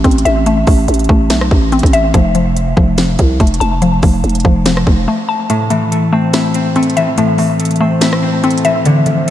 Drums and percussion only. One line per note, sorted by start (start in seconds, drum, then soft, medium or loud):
0.04 kick medium
0.04 closed hi-hat soft
0.11 closed hi-hat medium
0.18 closed hi-hat medium
0.25 closed hi-hat medium
0.46 closed hi-hat medium
0.67 kick loud
0.67 open hi-hat medium
0.88 closed hi-hat medium
0.94 closed hi-hat medium
0.99 closed hi-hat medium
1.04 closed hi-hat soft
1.09 kick loud
1.30 snare loud
1.30 closed hi-hat medium
1.41 cross-stick loud
1.51 kick medium
1.72 closed hi-hat soft
1.79 closed hi-hat medium
1.83 kick medium
1.83 closed hi-hat medium
1.93 closed hi-hat medium
2.14 kick loud
2.14 closed hi-hat medium
2.35 closed hi-hat medium
2.56 closed hi-hat medium
2.77 kick loud
2.98 snare loud
2.98 closed hi-hat medium
3.19 kick medium
3.19 closed hi-hat medium
3.40 kick medium
3.40 closed hi-hat soft
3.47 closed hi-hat medium
3.54 closed hi-hat medium
3.61 closed hi-hat medium
3.82 closed hi-hat medium
4.02 kick loud
4.02 open hi-hat medium
4.24 closed hi-hat soft
4.29 closed hi-hat medium
4.35 closed hi-hat medium
4.40 closed hi-hat medium
4.45 kick loud
4.66 snare loud
4.66 closed hi-hat medium
4.77 cross-stick loud
4.87 kick medium
5.50 closed hi-hat medium
5.70 closed hi-hat medium
5.92 closed hi-hat medium
6.33 snare loud
6.33 closed hi-hat medium
6.54 closed hi-hat medium
6.76 closed hi-hat soft
6.83 closed hi-hat medium
6.90 closed hi-hat medium
6.97 closed hi-hat medium
7.18 closed hi-hat medium
7.38 open hi-hat medium
7.60 closed hi-hat medium
7.65 closed hi-hat medium
7.71 closed hi-hat medium
7.76 closed hi-hat soft
8.01 snare loud
8.01 closed hi-hat medium
8.13 cross-stick loud
8.44 closed hi-hat soft
8.50 closed hi-hat medium
8.58 closed hi-hat medium
8.65 closed hi-hat medium
8.85 closed hi-hat medium
9.06 closed hi-hat medium